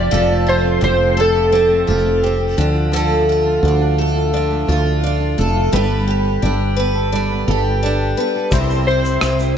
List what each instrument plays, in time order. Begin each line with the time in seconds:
Already playing: twelve-string acoustic guitar F3 C4 C5, steel-string acoustic guitar F3 C4 G4, electric slide guitar D5
0.11 fretless electric bass F1, twelve-string acoustic guitar F3 A4, steel-string acoustic guitar F3 G4
0.30 steel-string acoustic guitar A3
0.47 twelve-string acoustic guitar F4, steel-string acoustic guitar G4, electric slide guitar C5
0.64 steel-string acoustic guitar C4
0.81 fretless electric bass F1, twelve-string acoustic guitar C4, steel-string acoustic guitar G4, electric slide guitar C5
0.99 steel-string acoustic guitar C4
1.17 steel-string acoustic guitar A3, twelve-string acoustic guitar A4, electric slide guitar A4
1.35 steel-string acoustic guitar G4
1.51 steel-string acoustic guitar F3 G4, twelve-string acoustic guitar C4
1.70 steel-string acoustic guitar A3
1.87 fretless electric bass F1, twelve-string acoustic guitar F4, steel-string acoustic guitar G4
2.05 steel-string acoustic guitar C4
2.23 twelve-string acoustic guitar C4, steel-string acoustic guitar G4
2.40 steel-string acoustic guitar C4
2.57 fretless electric bass D2, twelve-string acoustic guitar D3, steel-string acoustic guitar F3
2.75 steel-string acoustic guitar F4
2.92 twelve-string acoustic guitar D3 A4, steel-string acoustic guitar F3 F4
3.10 steel-string acoustic guitar A3
3.28 steel-string acoustic guitar F4, twelve-string acoustic guitar F4
3.46 steel-string acoustic guitar D4
3.63 fretless electric bass D2, twelve-string acoustic guitar D4, steel-string acoustic guitar F4
3.82 steel-string acoustic guitar D4
3.98 steel-string acoustic guitar A3, twelve-string acoustic guitar A4
4.16 steel-string acoustic guitar F4
4.33 steel-string acoustic guitar F3 F4, twelve-string acoustic guitar D4
4.51 steel-string acoustic guitar A3
4.67 fretless electric bass D2, steel-string acoustic guitar F4, twelve-string acoustic guitar F4
4.86 steel-string acoustic guitar D4
5.03 twelve-string acoustic guitar D4, steel-string acoustic guitar F4
5.20 steel-string acoustic guitar D4
5.38 fretless electric bass F1, steel-string acoustic guitar A3, twelve-string acoustic guitar A4
5.56 steel-string acoustic guitar F4
5.72 fretless electric bass G1, steel-string acoustic guitar G3 A4, twelve-string acoustic guitar G3 B4
5.90 steel-string acoustic guitar B3
6.07 twelve-string acoustic guitar G4, steel-string acoustic guitar A4
6.25 steel-string acoustic guitar D4
6.42 fretless electric bass G1, twelve-string acoustic guitar D4, steel-string acoustic guitar A4
6.60 steel-string acoustic guitar D4
6.77 steel-string acoustic guitar B3, twelve-string acoustic guitar B4
6.95 steel-string acoustic guitar A4
7.12 steel-string acoustic guitar G3 A4, twelve-string acoustic guitar D4
7.32 steel-string acoustic guitar B3
7.48 fretless electric bass G1, twelve-string acoustic guitar G4, steel-string acoustic guitar A4
7.66 steel-string acoustic guitar D4
7.83 twelve-string acoustic guitar D4, steel-string acoustic guitar A4
8.01 steel-string acoustic guitar D4
8.17 steel-string acoustic guitar B3, twelve-string acoustic guitar B4
8.36 steel-string acoustic guitar A4
8.51 fretless electric bass C2, twelve-string acoustic guitar C3 C5, upright piano G3 E4 C5, steel-string acoustic guitar G3 G4, kick, shaker
8.70 steel-string acoustic guitar C4, shaker
8.87 twelve-string acoustic guitar E4, steel-string acoustic guitar G4, electric slide guitar C5
9.05 steel-string acoustic guitar E4, shaker
9.21 fretless electric bass C2, twelve-string acoustic guitar C4, steel-string acoustic guitar G4, cross-stick, shaker
9.39 steel-string acoustic guitar E4, shaker